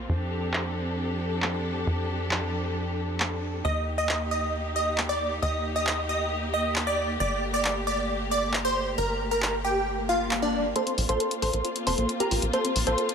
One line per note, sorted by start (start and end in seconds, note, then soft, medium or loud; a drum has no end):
0.00 3.61 C4 medium
0.09 1.85 F2 medium
0.09 3.61 F3 medium
0.09 3.61 D4 medium
0.09 3.61 G4 medium
0.09 3.61 A4 medium
0.54 clap loud
1.42 clap loud
1.87 3.62 F2 medium
2.31 clap loud
3.20 clap loud
3.65 5.40 D#2 medium
3.65 10.72 A#3 medium
3.65 7.17 D#4 medium
3.65 10.72 G4 medium
3.65 3.89 D#5 loud
3.65 3.89 D#6 loud
3.98 4.23 D#5 loud
3.98 4.23 D#6 loud
4.09 clap loud
4.31 4.64 D#5 medium
4.31 4.64 D#6 loud
4.76 5.00 D#5 medium
4.76 5.00 D#6 medium
4.98 clap loud
5.09 5.34 D5 medium
5.09 5.34 D6 medium
5.42 7.18 D#2 medium
5.42 5.67 D#5 loud
5.42 5.67 D#6 loud
5.76 6.00 D#5 medium
5.76 6.00 D#6 loud
5.87 clap loud
6.09 6.42 D#5 medium
6.09 6.42 D#6 loud
6.54 6.78 D#5 medium
6.54 6.78 D#6 loud
6.76 clap loud
6.87 7.12 D5 medium
6.87 7.12 D6 loud
7.20 8.96 G1 medium
7.20 10.72 A3 medium
7.20 7.45 D5 medium
7.20 7.45 D6 loud
7.54 7.78 D5 medium
7.54 7.78 D6 medium
7.65 clap loud
7.87 8.20 D5 medium
7.87 8.20 D6 medium
8.31 8.56 D5 medium
8.31 8.56 D6 loud
8.54 clap loud
8.65 8.89 C5 medium
8.65 8.89 C6 medium
8.98 10.74 G1 medium
8.98 9.23 A#4 loud
8.98 9.23 A#5 loud
9.31 9.56 A#4 medium
9.31 9.56 A#5 medium
9.42 clap loud
9.65 9.97 G4 loud
9.65 9.97 G5 medium
9.87 swell medium
10.09 10.34 F4 medium
10.09 10.34 F5 loud
10.31 clap loud
10.42 10.67 D4 medium
10.42 10.67 D5 medium
10.76 10.82 A#3 loud
10.76 13.15 A#3 medium
10.76 13.15 C4 medium
10.76 13.15 F4 medium
10.76 11.00 A4 medium
10.76 11.00 C5 medium
10.76 11.00 C6 medium
10.76 closed hi-hat medium
10.87 10.93 C4 medium
10.87 closed hi-hat medium
10.98 11.07 A#1 medium
10.98 open hi-hat loud
11.09 11.18 A#1 medium
11.09 11.15 F4 medium
11.09 11.34 A4 medium
11.09 11.34 C5 medium
11.09 11.34 C6 medium
11.09 closed hi-hat medium
11.20 11.27 A#4 medium
11.20 closed hi-hat medium
11.31 closed hi-hat medium
11.42 11.51 A#1 loud
11.42 11.75 A4 medium
11.42 11.46 C5 medium
11.42 11.75 C5 medium
11.42 11.75 C6 medium
11.42 open hi-hat loud
11.53 11.62 A#1 medium
11.53 11.60 A#4 medium
11.53 closed hi-hat medium
11.64 11.68 F4 medium
11.64 closed hi-hat medium
11.76 closed hi-hat medium
11.87 11.96 F1 loud
11.87 11.93 C4 medium
11.87 12.11 A4 medium
11.87 12.11 C5 loud
11.87 12.11 C6 loud
11.87 open hi-hat loud
11.98 12.07 A#1 medium
11.98 12.07 A#3 loud
11.98 closed hi-hat medium
12.09 closed hi-hat medium
12.20 12.27 C4 medium
12.20 12.45 G4 medium
12.20 12.45 A#4 medium
12.20 12.45 A#5 loud
12.20 closed hi-hat medium
12.31 12.40 A#1 medium
12.31 12.35 F4 loud
12.31 open hi-hat loud
12.42 12.51 A#1 medium
12.42 closed hi-hat medium
12.53 12.60 A#3 loud
12.53 12.78 A4 medium
12.53 12.78 C5 loud
12.53 12.78 C6 loud
12.53 closed hi-hat medium
12.65 12.71 C4 medium
12.65 closed hi-hat medium
12.76 12.84 A#1 loud
12.76 open hi-hat loud
12.87 12.96 A#1 medium
12.87 12.93 F4 medium
12.87 13.11 A4 medium
12.87 13.11 C5 medium
12.87 13.12 C6 loud
12.87 closed hi-hat medium
12.98 13.04 A#4 medium
12.98 closed hi-hat medium
13.09 closed hi-hat medium